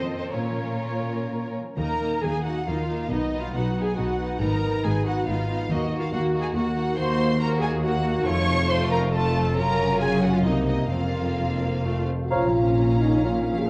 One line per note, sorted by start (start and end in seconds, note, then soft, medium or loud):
0.00 0.34 F2 soft
0.00 0.50 F3 soft
0.00 0.34 C4 soft
0.00 0.18 F4 soft
0.00 0.35 A4 soft
0.00 0.35 C5 medium
0.00 0.22 D#5 soft
0.20 0.82 F4 soft
0.20 0.37 A4 soft
0.20 0.35 C5 soft
0.35 1.58 A#2 soft
0.35 1.81 A#2 soft
0.35 1.58 C#4 soft
0.35 1.58 F4 soft
0.35 1.53 A#4 soft
0.35 1.53 C#5 soft
0.51 1.62 F3 soft
0.67 1.46 C#4 soft
0.84 1.31 F4 soft
1.00 2.65 A#4 soft
1.16 1.81 C#5 soft
1.32 1.81 F4 soft
1.48 1.81 C#4 soft
1.63 1.80 F3 soft
1.78 2.16 D#2 soft
1.78 2.16 D#3 medium
1.78 3.13 D#3 soft
1.78 2.00 A#3 soft
1.78 1.99 D#4 soft
1.78 2.20 A#4 medium
1.78 2.20 A#5 medium
2.01 2.21 A#3 soft
2.01 3.13 A#3 soft
2.01 2.21 D#4 soft
2.23 2.60 D#2 soft
2.23 2.60 D#3 soft
2.23 2.43 A#3 soft
2.23 2.43 D#4 soft
2.23 3.54 F#4 soft
2.23 2.45 G#4 medium
2.23 2.45 G#5 medium
2.44 2.66 A#3 soft
2.44 2.66 D#4 soft
2.44 2.67 F#4 soft
2.44 3.76 D#5 soft
2.44 2.67 F#5 medium
2.67 3.04 D#2 soft
2.67 3.04 D#3 soft
2.67 2.87 A#3 soft
2.67 2.87 D#4 soft
2.67 3.10 F4 soft
2.67 3.12 A#4 soft
2.67 3.11 F5 soft
2.88 3.10 A#3 soft
2.88 3.09 D#4 soft
2.88 4.19 D#4 soft
3.10 3.48 B1 medium
3.10 3.47 B2 medium
3.10 4.43 B2 soft
3.10 3.30 B3 soft
3.10 3.39 D#4 soft
3.10 3.31 D#4 soft
3.10 3.40 D#5 medium
3.32 4.43 F#3 soft
3.32 3.53 B3 soft
3.32 3.53 D#4 soft
3.40 3.55 F4 soft
3.40 3.55 F5 soft
3.54 3.91 B1 medium
3.54 3.91 B2 soft
3.54 3.75 B3 soft
3.54 3.75 D#4 soft
3.54 3.84 F#4 medium
3.54 4.43 F#4 soft
3.54 3.83 F#5 medium
3.77 3.96 B3 soft
3.77 3.96 D#4 soft
3.77 5.05 D#5 soft
3.83 3.98 G#4 soft
3.83 3.98 G#5 medium
3.97 4.34 B1 soft
3.97 4.34 B2 soft
3.97 4.18 B3 soft
3.97 4.18 D#4 soft
3.97 4.40 F#4 soft
3.97 5.26 B4 soft
3.97 4.41 F#5 medium
4.19 4.40 B3 soft
4.19 4.40 D#4 soft
4.19 5.48 D#4 soft
4.41 4.78 G#1 medium
4.41 4.77 G#2 medium
4.41 5.72 G#2 soft
4.41 4.62 B3 soft
4.41 4.62 D#4 soft
4.41 4.84 A#4 medium
4.41 4.85 A#5 medium
4.63 5.70 D#3 soft
4.63 4.83 B3 soft
4.63 4.83 D#4 soft
4.84 5.21 G#1 soft
4.84 5.21 G#2 soft
4.84 5.04 B3 soft
4.84 5.04 D#4 soft
4.84 5.72 G#4 soft
4.84 5.06 G#4 soft
4.84 5.06 G#5 medium
5.06 5.26 B3 soft
5.06 5.26 D#4 soft
5.06 5.28 F#4 medium
5.06 6.33 D#5 soft
5.06 5.28 F#5 medium
5.27 5.64 G#1 medium
5.27 5.63 G#2 medium
5.27 5.48 B3 soft
5.27 5.48 D#4 soft
5.27 5.70 F4 soft
5.27 5.72 B4 soft
5.27 5.70 F5 medium
5.49 5.70 B3 soft
5.49 6.75 D#4 soft
5.49 5.70 D#4 soft
5.70 6.05 D#2 medium
5.70 6.06 D#2 medium
5.70 6.97 D#3 soft
5.70 5.90 A#3 soft
5.70 5.79 D#4 soft
5.70 5.91 F#4 soft
5.70 5.99 D#5 medium
5.92 6.12 A#3 soft
5.92 7.18 A#3 soft
5.92 6.11 F#4 soft
5.99 6.04 F4 soft
5.99 6.13 F5 medium
6.12 6.48 D#2 medium
6.12 6.32 A#3 medium
6.12 6.40 F#4 medium
6.12 6.33 F#4 soft
6.12 7.39 F#4 soft
6.12 6.21 F#5 medium
6.33 6.54 A#3 soft
6.33 6.54 F#4 soft
6.33 7.61 D#5 soft
6.41 6.55 G#4 medium
6.41 6.47 G#5 medium
6.55 6.90 D#2 medium
6.55 6.91 D#2 medium
6.55 6.74 A#3 soft
6.55 6.97 F#4 medium
6.55 6.74 F#4 soft
6.55 7.83 A#4 soft
6.55 6.97 F#5 medium
6.75 6.96 A#3 soft
6.75 8.04 D#4 soft
6.75 6.96 F#4 soft
6.97 8.22 D#2 medium
6.97 8.23 D#2 medium
6.97 8.29 D#3 medium
6.97 7.37 A#3 soft
6.97 7.37 F#4 soft
6.97 7.40 C5 medium
6.97 7.41 C6 medium
7.19 8.28 A#3 soft
7.40 7.83 A#3 medium
7.40 7.82 F#4 medium
7.40 8.28 F#4 soft
7.40 7.62 A#4 medium
7.40 7.48 A#5 medium
7.62 7.83 G#4 medium
7.62 8.28 D#5 soft
7.62 7.70 G#5 medium
7.83 8.26 A#3 medium
7.83 8.26 F#4 medium
7.83 8.29 A#4 soft
7.83 8.26 F#5 medium
8.05 8.28 D#4 soft
8.26 9.55 F1 medium
8.26 9.55 F2 medium
8.26 9.59 F2 medium
8.26 8.69 A3 medium
8.26 8.69 F4 medium
8.26 8.69 C#5 medium
8.26 8.69 C#6 medium
8.48 9.59 C3 soft
8.69 9.13 A3 medium
8.69 10.00 F4 soft
8.69 9.13 F4 medium
8.69 8.91 C5 medium
8.69 8.92 C6 medium
8.91 9.13 A#4 medium
8.91 9.59 C5 medium
8.91 9.00 A#5 medium
9.13 9.57 A3 medium
9.13 9.55 F4 medium
9.13 9.56 A4 medium
9.13 9.59 A4 soft
9.13 9.56 A5 medium
9.35 9.59 C4 soft
9.57 10.45 F#1 medium
9.57 10.45 F#2 medium
9.57 10.47 F#2 medium
9.57 10.43 C#4 medium
9.57 10.43 F4 medium
9.57 10.01 A#4 medium
9.57 10.00 A#5 medium
9.79 10.47 C#3 soft
10.00 10.47 F4 soft
10.00 10.23 G#4 medium
10.00 10.22 G#5 medium
10.22 10.34 F#4 medium
10.22 11.60 A#4 soft
10.22 10.34 F#5 medium
10.34 10.46 F4 soft
10.34 10.46 F5 medium
10.44 10.91 C2 soft
10.44 10.91 C3 medium
10.44 10.93 C3 soft
10.44 10.89 A#3 soft
10.44 10.90 D#4 soft
10.44 10.67 D#4 medium
10.44 10.66 D#5 medium
10.67 10.76 D#4 soft
10.67 10.93 F#4 soft
10.67 12.07 C5 soft
10.67 10.90 D#5 medium
10.90 12.08 F1 soft
10.90 12.08 F2 soft
10.90 11.83 F2 soft
10.90 11.82 A#3 soft
10.90 11.83 C4 soft
10.90 12.06 F4 medium
10.90 12.05 F5 medium
11.15 11.87 C3 soft
11.38 12.07 F4 soft
11.61 11.86 A#4 soft
11.85 12.33 F2 soft
11.85 12.11 A3 soft
11.85 12.10 C4 soft
11.85 12.17 F4 medium
12.08 12.76 F4 soft
12.08 12.33 C5 soft
12.21 12.32 F#4 soft
12.30 13.70 A#1 medium
12.30 13.70 A#2 medium
12.30 13.67 A#2 soft
12.30 12.47 F3 soft
12.30 13.64 C#4 medium
12.30 12.99 F4 medium
12.30 12.47 C#5 medium
12.30 13.70 F5 medium
12.30 12.47 F5 soft
12.30 12.52 A#5 medium
12.30 13.64 A#5 soft
12.47 13.52 F3 soft
12.62 13.37 A#3 soft
12.78 13.22 F4 soft
12.93 13.70 C#5 soft
13.02 13.24 D#4 medium
13.08 13.70 A#4 soft
13.23 13.70 F4 soft
13.23 13.57 F4 medium
13.38 13.70 A#3 soft
13.53 13.70 F3 soft
13.59 13.69 G#4 medium